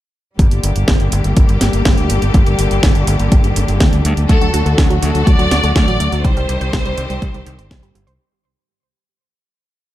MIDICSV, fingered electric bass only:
0, 0, Header, 1, 2, 480
1, 0, Start_track
1, 0, Key_signature, -2, "minor"
1, 0, Tempo, 487805
1, 384, Time_signature, 4, 2, 24, 8
1, 9787, End_track
2, 0, Start_track
2, 0, Title_t, "Fingered electric bass"
2, 0, Program_c, 0, 33
2, 385, Note_on_c, 0, 31, 94
2, 477, Note_off_c, 0, 31, 0
2, 505, Note_on_c, 0, 31, 70
2, 597, Note_off_c, 0, 31, 0
2, 625, Note_on_c, 0, 31, 85
2, 717, Note_off_c, 0, 31, 0
2, 747, Note_on_c, 0, 31, 77
2, 838, Note_off_c, 0, 31, 0
2, 865, Note_on_c, 0, 31, 94
2, 957, Note_off_c, 0, 31, 0
2, 987, Note_on_c, 0, 31, 71
2, 1078, Note_off_c, 0, 31, 0
2, 1107, Note_on_c, 0, 31, 92
2, 1198, Note_off_c, 0, 31, 0
2, 1226, Note_on_c, 0, 31, 79
2, 1317, Note_off_c, 0, 31, 0
2, 1346, Note_on_c, 0, 31, 90
2, 1437, Note_off_c, 0, 31, 0
2, 1467, Note_on_c, 0, 31, 70
2, 1558, Note_off_c, 0, 31, 0
2, 1587, Note_on_c, 0, 31, 84
2, 1678, Note_off_c, 0, 31, 0
2, 1707, Note_on_c, 0, 31, 78
2, 1798, Note_off_c, 0, 31, 0
2, 1825, Note_on_c, 0, 31, 92
2, 1917, Note_off_c, 0, 31, 0
2, 1948, Note_on_c, 0, 38, 70
2, 2038, Note_off_c, 0, 38, 0
2, 2066, Note_on_c, 0, 31, 89
2, 2158, Note_off_c, 0, 31, 0
2, 2186, Note_on_c, 0, 31, 77
2, 2277, Note_off_c, 0, 31, 0
2, 2305, Note_on_c, 0, 31, 94
2, 2397, Note_off_c, 0, 31, 0
2, 2426, Note_on_c, 0, 31, 71
2, 2517, Note_off_c, 0, 31, 0
2, 2545, Note_on_c, 0, 31, 86
2, 2637, Note_off_c, 0, 31, 0
2, 2668, Note_on_c, 0, 31, 76
2, 2758, Note_off_c, 0, 31, 0
2, 2785, Note_on_c, 0, 31, 97
2, 2877, Note_off_c, 0, 31, 0
2, 2906, Note_on_c, 0, 31, 73
2, 2997, Note_off_c, 0, 31, 0
2, 3026, Note_on_c, 0, 31, 90
2, 3117, Note_off_c, 0, 31, 0
2, 3145, Note_on_c, 0, 31, 80
2, 3237, Note_off_c, 0, 31, 0
2, 3265, Note_on_c, 0, 31, 92
2, 3357, Note_off_c, 0, 31, 0
2, 3385, Note_on_c, 0, 31, 72
2, 3477, Note_off_c, 0, 31, 0
2, 3506, Note_on_c, 0, 31, 89
2, 3597, Note_off_c, 0, 31, 0
2, 3626, Note_on_c, 0, 31, 78
2, 3717, Note_off_c, 0, 31, 0
2, 3745, Note_on_c, 0, 38, 93
2, 3837, Note_off_c, 0, 38, 0
2, 3864, Note_on_c, 0, 38, 73
2, 3956, Note_off_c, 0, 38, 0
2, 3985, Note_on_c, 0, 38, 92
2, 4077, Note_off_c, 0, 38, 0
2, 4105, Note_on_c, 0, 38, 77
2, 4197, Note_off_c, 0, 38, 0
2, 4226, Note_on_c, 0, 38, 95
2, 4317, Note_off_c, 0, 38, 0
2, 4346, Note_on_c, 0, 38, 74
2, 4437, Note_off_c, 0, 38, 0
2, 4466, Note_on_c, 0, 38, 88
2, 4557, Note_off_c, 0, 38, 0
2, 4585, Note_on_c, 0, 38, 78
2, 4677, Note_off_c, 0, 38, 0
2, 4704, Note_on_c, 0, 38, 100
2, 4796, Note_off_c, 0, 38, 0
2, 4827, Note_on_c, 0, 38, 71
2, 4917, Note_off_c, 0, 38, 0
2, 4946, Note_on_c, 0, 38, 94
2, 5037, Note_off_c, 0, 38, 0
2, 5068, Note_on_c, 0, 38, 80
2, 5158, Note_off_c, 0, 38, 0
2, 5186, Note_on_c, 0, 38, 94
2, 5277, Note_off_c, 0, 38, 0
2, 5306, Note_on_c, 0, 38, 73
2, 5397, Note_off_c, 0, 38, 0
2, 5426, Note_on_c, 0, 38, 90
2, 5517, Note_off_c, 0, 38, 0
2, 5546, Note_on_c, 0, 38, 81
2, 5637, Note_off_c, 0, 38, 0
2, 5666, Note_on_c, 0, 38, 97
2, 5757, Note_off_c, 0, 38, 0
2, 5783, Note_on_c, 0, 33, 73
2, 5876, Note_off_c, 0, 33, 0
2, 5904, Note_on_c, 0, 38, 90
2, 5996, Note_off_c, 0, 38, 0
2, 6024, Note_on_c, 0, 38, 79
2, 6116, Note_off_c, 0, 38, 0
2, 6146, Note_on_c, 0, 36, 98
2, 6237, Note_off_c, 0, 36, 0
2, 6265, Note_on_c, 0, 36, 76
2, 6357, Note_off_c, 0, 36, 0
2, 6386, Note_on_c, 0, 36, 91
2, 6477, Note_off_c, 0, 36, 0
2, 6505, Note_on_c, 0, 36, 79
2, 6597, Note_off_c, 0, 36, 0
2, 6626, Note_on_c, 0, 36, 100
2, 6717, Note_off_c, 0, 36, 0
2, 6746, Note_on_c, 0, 36, 73
2, 6837, Note_off_c, 0, 36, 0
2, 6866, Note_on_c, 0, 36, 94
2, 6957, Note_off_c, 0, 36, 0
2, 6985, Note_on_c, 0, 36, 80
2, 7077, Note_off_c, 0, 36, 0
2, 7105, Note_on_c, 0, 36, 96
2, 7197, Note_off_c, 0, 36, 0
2, 7226, Note_on_c, 0, 36, 71
2, 7317, Note_off_c, 0, 36, 0
2, 7346, Note_on_c, 0, 36, 91
2, 7437, Note_off_c, 0, 36, 0
2, 7466, Note_on_c, 0, 31, 78
2, 7557, Note_off_c, 0, 31, 0
2, 7585, Note_on_c, 0, 36, 98
2, 7677, Note_off_c, 0, 36, 0
2, 7705, Note_on_c, 0, 31, 75
2, 7797, Note_off_c, 0, 31, 0
2, 7824, Note_on_c, 0, 31, 88
2, 7916, Note_off_c, 0, 31, 0
2, 7944, Note_on_c, 0, 36, 78
2, 8036, Note_off_c, 0, 36, 0
2, 9787, End_track
0, 0, End_of_file